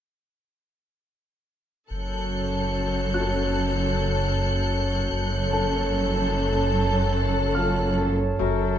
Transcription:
0, 0, Header, 1, 9, 480
1, 0, Start_track
1, 0, Key_signature, 3, "minor"
1, 0, Tempo, 820793
1, 1122, Time_signature, 4, 2, 24, 8
1, 1600, Tempo, 798935
1, 4000, Tempo, 827586
1, 5192, End_track
2, 0, Start_track
2, 0, Title_t, "Violin section"
2, 0, Program_c, 0, 48
2, 1119, Note_on_c, 0, 90, 19
2, 1120, Note_on_c, 0, 91, 18
2, 1120, Note_on_c, 0, 97, 18
2, 3732, Note_off_c, 0, 97, 0
2, 4213, Note_off_c, 0, 91, 0
2, 4694, Note_off_c, 0, 90, 0
2, 5192, End_track
3, 0, Start_track
3, 0, Title_t, "Grand piano"
3, 0, Program_c, 1, 0
3, 1243, Control_c, 1, 64, 127
3, 1843, Note_on_c, 1, 90, 25
3, 1845, Note_on_c, 1, 66, 17
3, 3254, Note_off_c, 1, 90, 0
3, 3255, Note_off_c, 1, 66, 0
3, 3276, Note_on_c, 1, 81, 36
3, 3281, Note_on_c, 1, 69, 25
3, 4474, Note_on_c, 1, 89, 30
3, 4476, Note_on_c, 1, 65, 27
3, 4695, Note_off_c, 1, 81, 0
3, 4697, Note_off_c, 1, 69, 0
3, 4937, Note_off_c, 1, 89, 0
3, 4938, Note_off_c, 1, 65, 0
3, 4972, Control_c, 1, 64, 0
3, 5074, Control_c, 1, 64, 127
3, 5192, End_track
4, 0, Start_track
4, 0, Title_t, "Glass harmonica"
4, 0, Program_c, 2, 92
4, 1113, Note_on_c, 2, 81, 17
4, 1116, Note_on_c, 2, 73, 15
4, 1117, Note_on_c, 2, 66, 15
4, 3008, Note_off_c, 2, 81, 0
4, 3010, Note_off_c, 2, 73, 0
4, 3011, Note_off_c, 2, 66, 0
4, 3035, Note_on_c, 2, 73, 24
4, 3038, Note_on_c, 2, 69, 23
4, 3040, Note_on_c, 2, 81, 23
4, 4937, Note_off_c, 2, 73, 0
4, 4938, Note_off_c, 2, 69, 0
4, 4940, Note_off_c, 2, 81, 0
4, 4963, Note_on_c, 2, 73, 20
4, 4963, Note_on_c, 2, 81, 19
4, 4965, Note_on_c, 2, 66, 20
4, 5192, Note_off_c, 2, 66, 0
4, 5192, Note_off_c, 2, 73, 0
4, 5192, Note_off_c, 2, 81, 0
4, 5192, End_track
5, 0, Start_track
5, 0, Title_t, "Violin section"
5, 0, Program_c, 3, 48
5, 1119, Note_on_c, 3, 69, 24
5, 3012, Note_off_c, 3, 69, 0
5, 3032, Note_on_c, 3, 69, 40
5, 4817, Note_off_c, 3, 69, 0
5, 4963, Note_on_c, 3, 69, 28
5, 5192, Note_off_c, 3, 69, 0
5, 5192, End_track
6, 0, Start_track
6, 0, Title_t, "Cello section"
6, 0, Program_c, 4, 48
6, 1117, Note_on_c, 4, 42, 25
6, 3011, Note_off_c, 4, 42, 0
6, 3039, Note_on_c, 4, 42, 39
6, 4820, Note_off_c, 4, 42, 0
6, 4961, Note_on_c, 4, 42, 31
6, 5192, Note_off_c, 4, 42, 0
6, 5192, End_track
7, 0, Start_track
7, 0, Title_t, "Harp"
7, 0, Program_c, 5, 46
7, 4963, Note_on_c, 5, 42, 33
7, 5192, Note_off_c, 5, 42, 0
7, 5192, End_track
8, 0, Start_track
8, 0, Title_t, "Double bass section"
8, 0, Program_c, 6, 48
8, 1123, Note_on_c, 6, 30, 25
8, 3014, Note_off_c, 6, 30, 0
8, 3041, Note_on_c, 6, 30, 36
8, 4821, Note_off_c, 6, 30, 0
8, 4958, Note_on_c, 6, 30, 26
8, 5192, Note_off_c, 6, 30, 0
8, 5192, End_track
9, 0, Start_track
9, 0, Title_t, "Sub bass"
9, 0, Program_c, 7, 38
9, 1115, Note_on_c, 7, 30, 45
9, 3010, Note_off_c, 7, 30, 0
9, 3032, Note_on_c, 7, 30, 54
9, 4936, Note_off_c, 7, 30, 0
9, 4971, Note_on_c, 7, 30, 50
9, 5192, Note_off_c, 7, 30, 0
9, 5192, End_track
0, 0, End_of_file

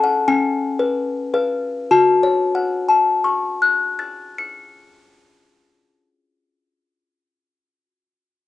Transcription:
0, 0, Header, 1, 2, 480
1, 0, Start_track
1, 0, Key_signature, 3, "minor"
1, 0, Tempo, 1016949
1, 373, Tempo, 1125704
1, 853, Time_signature, 6, 3, 24, 8
1, 853, Tempo, 1176471
1, 3528, End_track
2, 0, Start_track
2, 0, Title_t, "Music box"
2, 0, Program_c, 0, 10
2, 0, Note_on_c, 0, 61, 63
2, 0, Note_on_c, 0, 69, 46
2, 17, Note_on_c, 0, 78, 84
2, 113, Note_off_c, 0, 69, 0
2, 114, Note_off_c, 0, 61, 0
2, 131, Note_on_c, 0, 61, 61
2, 131, Note_on_c, 0, 80, 84
2, 132, Note_off_c, 0, 78, 0
2, 374, Note_on_c, 0, 71, 46
2, 601, Note_off_c, 0, 71, 0
2, 606, Note_on_c, 0, 71, 44
2, 607, Note_on_c, 0, 77, 43
2, 836, Note_off_c, 0, 71, 0
2, 836, Note_off_c, 0, 77, 0
2, 837, Note_off_c, 0, 61, 0
2, 837, Note_off_c, 0, 80, 0
2, 850, Note_on_c, 0, 66, 52
2, 850, Note_on_c, 0, 81, 61
2, 982, Note_on_c, 0, 73, 52
2, 1112, Note_on_c, 0, 78, 47
2, 1244, Note_off_c, 0, 81, 0
2, 1249, Note_on_c, 0, 81, 46
2, 1395, Note_on_c, 0, 85, 46
2, 1548, Note_on_c, 0, 90, 40
2, 1699, Note_on_c, 0, 93, 35
2, 1860, Note_on_c, 0, 97, 37
2, 2081, Note_off_c, 0, 66, 0
2, 2213, Note_off_c, 0, 73, 0
2, 2342, Note_off_c, 0, 78, 0
2, 2479, Note_off_c, 0, 81, 0
2, 2625, Note_off_c, 0, 85, 0
2, 2778, Note_off_c, 0, 90, 0
2, 2887, Note_off_c, 0, 93, 0
2, 2888, Note_off_c, 0, 97, 0
2, 3528, End_track
0, 0, End_of_file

